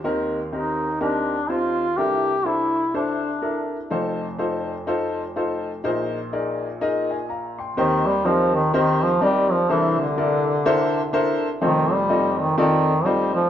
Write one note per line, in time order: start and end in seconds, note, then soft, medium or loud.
0.04 1.94 D#2 medium
0.04 1.94 D#3 medium
0.04 0.38 C4 medium
0.04 0.38 D#4 medium
0.04 0.38 G4 medium
0.04 0.38 A#4 medium
0.52 0.86 C4 medium
0.52 0.86 D#4 medium
0.52 0.98 D#4 medium
0.52 0.86 G4 medium
0.52 0.86 A#4 medium
1.01 1.34 C4 medium
1.01 1.52 D4 medium
1.01 1.34 D#4 medium
1.01 1.34 G4 medium
1.01 1.34 A#4 medium
1.49 1.83 C4 medium
1.49 1.83 D#4 soft
1.49 1.99 F4 medium
1.49 1.83 G4 medium
1.49 1.83 C5 medium
1.97 3.87 C2 medium
1.97 3.87 C3 medium
1.97 2.31 D4 medium
1.97 2.31 E4 medium
1.97 2.48 G4 loud
1.97 2.31 A4 medium
1.97 2.31 A#4 medium
2.45 2.79 D4 medium
2.45 2.79 E4 medium
2.45 2.95 E4 medium
2.45 2.79 A4 medium
2.45 2.79 C5 medium
2.94 3.28 D4 medium
2.94 3.68 D4 medium
2.94 3.28 E4 medium
2.94 3.28 A4 medium
2.94 3.28 C5 medium
3.42 3.76 D4 medium
3.42 3.76 E4 medium
3.42 3.76 A4 medium
3.42 3.76 A#4 medium
3.90 5.81 F1 medium
3.90 5.81 F2 medium
3.90 4.24 D#4 medium
3.90 4.25 F4 medium
3.90 4.25 A4 medium
3.90 4.25 C5 medium
4.39 4.73 D#4 medium
4.39 4.73 F4 medium
4.39 4.73 A4 medium
4.39 4.73 C5 medium
4.87 5.21 D#4 medium
4.87 5.21 F4 medium
4.87 5.21 A4 medium
4.87 5.21 C5 medium
5.36 5.70 D#4 medium
5.36 5.70 F4 medium
5.36 5.70 A4 medium
5.36 5.70 C5 medium
5.84 7.74 A#1 medium
5.84 7.73 A#2 medium
5.84 6.18 D#4 medium
5.84 6.18 G#4 medium
5.84 6.18 A#4 medium
5.84 6.18 C5 medium
6.33 6.66 D#4 medium
6.33 6.67 G#4 medium
6.33 6.66 A#4 medium
6.33 6.67 D5 medium
6.81 7.15 D#4 medium
6.81 7.15 G#4 medium
6.81 7.15 A#4 medium
6.81 7.10 D#5 medium
7.11 7.29 D#5 medium
7.11 7.29 G#5 medium
7.29 7.57 F5 medium
7.29 7.57 A#5 medium
7.59 8.05 G5 soft
7.59 8.04 C6 medium
7.77 9.66 D#2 medium
7.77 8.08 D#3 loud
7.77 9.66 D#3 medium
7.77 8.11 C4 medium
7.77 8.11 D#4 medium
7.77 8.11 G4 medium
7.77 8.11 A#4 medium
7.77 8.11 C5 medium
8.06 8.27 G3 medium
8.25 8.55 F3 loud
8.25 8.59 C4 medium
8.25 8.59 D#4 medium
8.25 8.59 G4 medium
8.25 8.59 A#4 medium
8.25 8.59 C5 medium
8.55 8.73 D#3 medium
8.74 9.04 D#3 loud
8.74 9.07 C4 medium
8.74 9.07 D#4 medium
8.74 9.07 G4 medium
8.74 9.07 A#4 medium
8.74 9.07 C5 loud
9.03 9.21 F3 loud
9.21 9.53 G3 loud
9.21 9.55 C4 medium
9.21 9.55 D#4 medium
9.21 9.55 G4 medium
9.21 9.55 A#4 medium
9.21 9.55 D5 medium
9.51 9.72 F3 medium
9.69 11.58 C2 medium
9.69 11.58 C3 medium
9.69 9.99 E3 loud
9.69 10.03 D4 medium
9.69 10.03 E4 medium
9.69 10.03 A4 medium
9.69 10.03 A#4 medium
9.69 10.03 C5 medium
10.00 11.39 D3 loud
10.17 10.51 D4 medium
10.17 10.51 E4 medium
10.17 10.51 A4 medium
10.17 10.51 A#4 medium
10.17 10.51 D5 medium
10.66 10.99 D4 loud
10.66 10.99 E4 medium
10.66 10.99 A4 loud
10.66 10.99 A#4 medium
10.66 10.99 C5 loud
11.13 11.47 D4 medium
11.13 11.47 E4 medium
11.13 11.47 A4 medium
11.13 11.47 A#4 medium
11.13 11.47 C5 loud
11.61 13.50 F1 medium
11.61 13.50 F2 medium
11.61 11.94 D#3 loud
11.61 11.95 C4 medium
11.61 11.95 D#4 medium
11.61 11.95 F4 medium
11.61 11.95 A4 medium
11.61 11.95 C5 medium
11.92 12.39 G3 loud
12.09 12.43 C4 medium
12.09 12.43 D#4 medium
12.09 12.43 F4 medium
12.09 12.43 A4 medium
12.09 12.43 D#5 medium
12.39 12.57 D#3 medium
12.58 13.07 D#3 loud
12.58 12.91 C4 medium
12.58 12.91 D#4 medium
12.58 12.91 F4 medium
12.58 12.91 A4 medium
12.58 12.91 D5 loud
13.05 13.34 G3 loud
13.05 13.39 C4 medium
13.05 13.39 D#4 medium
13.05 13.39 F4 medium
13.05 13.39 A4 medium
13.05 13.39 C5 medium
13.35 13.50 F3 medium